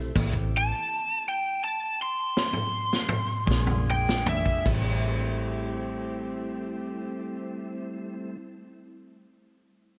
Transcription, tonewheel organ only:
Already playing: A3 C4 E4 G4
0.16 A3 C4 E4 G4
3.48 G#3 A#3 D4 F4
4.66 G3 A3 C4 E4

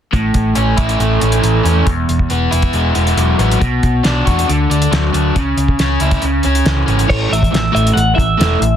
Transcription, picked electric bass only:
0.13 A1
0.35 A1
0.56 A1
0.78 A1
1.00 A1
1.22 A1
1.43 A1
1.65 E2
1.87 E1
2.09 E1
2.30 E1
2.52 E1
2.73 E1
2.96 E1
3.17 E1
3.39 A1
3.61 B1
3.83 B1
4.05 B1
4.27 E2
4.49 D2
4.70 D2
4.92 D2
5.14 D2
5.36 C#2
5.57 C#2
5.80 C#2
6.00 C#2
6.23 C#2
6.45 C#2
6.66 C#2
6.88 G#1
7.10 A1
7.31 A1
7.53 A1
7.75 A1
7.96 A1
8.18 A1
8.40 E1
8.61 A1

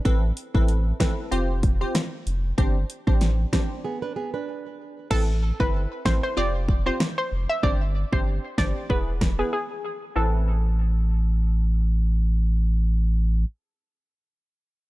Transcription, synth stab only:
0.05 C4 E4 A4 B4
0.54 C4 E4 A4 B4
1.00 C4 E4 A4 B4
1.31 C4 F4 G4 C5
1.81 C4 F4 G4 C5
2.58 C4 D4 G4 C5
3.07 C4 D4 G4 C5
3.53 C4 D4 G4 C5
5.10 C4 E4 A4 B4
5.60 C4 E4 A4 B4
6.05 C4 E4 A4 B4
6.37 C4 F4 G4 C5
6.86 C4 F4 G4 C5
7.63 C4 D4 G4 C5
8.12 C4 D4 G4 C5
8.58 C4 D4 G4 C5
8.89 B3 E4 G#4 B4
9.39 B3 E4 G#4 B4
10.16 C4 E4 A4 B4

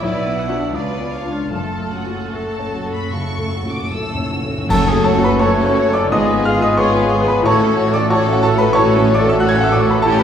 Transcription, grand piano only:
0.03 B1
0.26 B3
0.49 D4 F#4
0.73 C#2
0.98 B3
1.23 D4 F4
1.51 F#2
1.80 A3
2.06 F#4
2.34 A4
2.59 C#5
2.86 A4
3.12 C#3
3.39 A3
3.65 F#4
3.92 A4
4.17 C#5
4.44 A4
4.69 F#2 A4 A5
4.87 G#4 G#5
4.94 A3
5.04 A4 A5
5.18 F#4
5.24 B4 B5
5.39 A4 C#5 A5 C#6
5.65 C#5
5.89 A4
5.93 D5 D6
6.11 G#2 D#5 D#6
6.33 B3
6.45 F5 F6
6.56 F4
6.62 D#5 D#6
6.77 B4 C#5 C#6
6.99 F5
7.21 B4
7.28 B4 B5
7.42 A2 C#5 C#6
7.46 A5
7.65 A3
7.88 A4
7.94 D5 D6
8.10 F#4 C#5 A5 C#6
8.33 F#5
8.43 A4 A5
8.56 A4 B4 B5
8.73 A2 C#5 A5 C#6
8.97 A3
9.14 D5 D6
9.19 A4
9.29 E6
9.40 F#4 F#6
9.49 G#6
9.55 F#6
9.61 F#5 E6
9.72 D6
9.80 A4 C#6
9.90 B5
10.02 A2 A4 A5
10.19 B4 B5

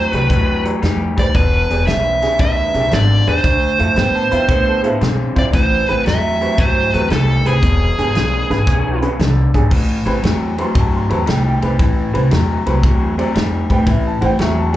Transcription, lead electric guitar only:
Already playing: C5
0.10 B4
1.19 D5
1.36 B4
1.87 E5
2.41 E5
2.94 D5
3.29 C5
5.39 D5
5.55 C5
5.90 B4
6.08 E5
6.60 C5
6.95 B4
7.13 A4
7.47 G#4

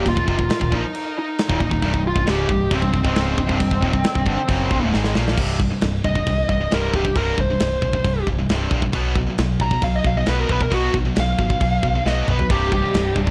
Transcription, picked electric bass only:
0.06 D#1
0.17 D#1
0.28 F1
0.39 D#1
0.51 muted picked electric bass stroke
0.61 D#1
0.72 A#1
0.85 muted picked electric bass stroke
1.50 D#1
1.61 D#1
1.71 D#1
1.82 C1
1.94 C1
2.15 C1
2.28 C#1
2.49 C1
2.71 C1
2.82 C1
2.93 C1
3.05 C#1
3.38 C1
3.49 C1
3.60 C1
3.72 C1
3.83 D#1
3.94 C1
4.06 muted picked electric bass stroke
4.16 C1
4.27 G1
4.39 muted picked electric bass stroke
4.49 F#1
4.71 C1
4.83 C#1
4.95 G#1
5.16 A#1
5.38 C1
5.83 C1
6.05 C1
6.27 C2
6.49 C1
6.73 C1
6.94 C1
7.16 C1
7.38 C1
7.60 C1
7.82 B1
8.04 C1
8.27 C1
8.50 C1
8.71 A#1
8.93 B1
9.39 B1
9.59 B1
9.82 B1
10.05 B1
10.27 B1
10.49 B1
10.71 B1
10.94 B1
11.17 B1
11.39 G#1
11.61 B1
11.83 B1
12.05 B1
12.28 B1
12.51 C1
12.95 C1
13.16 C1

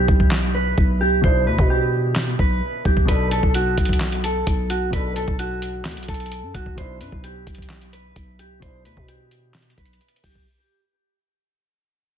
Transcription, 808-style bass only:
0.08 B1
0.78 B1
1.24 B1
1.47 D2
1.59 B2
2.39 B1
2.85 B1
3.08 B1
3.43 B1
3.78 B1
4.47 B1
4.93 B1
5.28 B1
5.85 D2
5.97 B1
6.08 B1
6.43 F#2
6.55 B1
6.78 B1
7.01 F#2
7.12 B1
7.47 B1
8.16 B1
8.62 B1
8.85 D2
8.97 B2
9.78 B1
10.24 B1

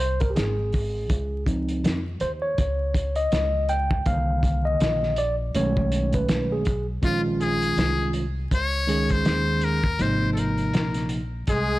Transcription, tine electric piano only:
0.00 C5
0.21 A#4
0.30 G4
0.36 G#4
1.46 F3 C4 D#4
2.21 C5
2.42 C#5
3.16 D#5
3.69 G5
4.06 D3 D#3 A#3 F5
4.65 D#5
5.18 D5
5.54 D#3 G#3 A3 C#4 C#5
6.14 B4
6.52 G#4
7.02 D#3 G#3 C#4 F4
8.87 D#3 G#3 C#4 G#4
9.98 C3 F3 A#3 D#4

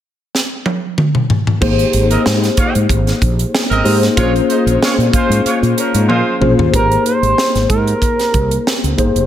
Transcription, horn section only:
2.11 C4 A#4 D#5
2.58 F4 C#5 F5
3.70 C4 A#4 D#5
4.17 G#3 F4 C#5
4.49 D#4 C5 D#5
4.82 G#3 F4 C#5
5.13 G#3 F4 C5
5.45 G#3 F4 C#5
5.77 F3 C#4 A#4
6.08 G#3 F4 C5

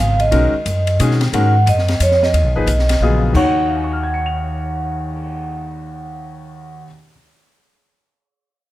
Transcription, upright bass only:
Already playing: G#1
0.32 B1
0.66 F#2
1.00 B2
1.33 G#2
1.66 F#2
2.00 F2
2.33 D#2
2.44 B1
2.56 G#1
2.66 B1
3.00 A#1
3.34 D#2

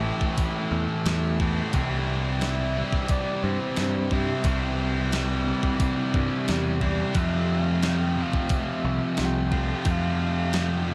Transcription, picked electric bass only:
Already playing: A1
0.72 E2
1.06 E2
1.74 C2
3.44 G2
3.78 G2
4.44 C2
6.15 G2
6.49 E2
7.15 F2
8.85 C2
9.19 C2
9.86 F2

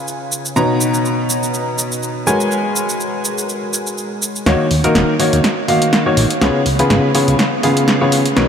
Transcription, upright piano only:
Already playing: C#3 F4 B4 C#5 G#5
0.56 B2 D#4 B4 C#5 A#5
2.27 G#3 F#4 A#4 B4 C#5 G#5
4.46 D#3 A#3 D#4 F#4 C#5
4.84 D#3 A#3 D#4 F#4 A#4
5.19 D#3 A#3 D#4 F#4 C#5
5.68 D#3 A#3 D#4 F#4 F5
6.06 D#3 A#3 D#4 F#4 C#5
6.41 C#3 B3 F4 G#4 C#5
6.79 C#3 B3 F4 G#4 B4
7.15 C#3 B3 F4 G#4 C#5
7.63 C#3 B3 F4 G#4 F5
8.01 C#3 B3 F4 G#4 C#5
8.37 B2 B3 D#4 A#4 C#5

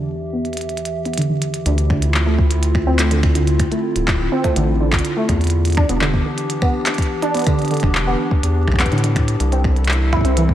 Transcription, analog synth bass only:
1.66 D2
3.96 D1
4.56 A1
5.29 E2
5.89 E1
7.83 E1
8.43 E2
8.68 B1
8.92 A2
9.40 C2

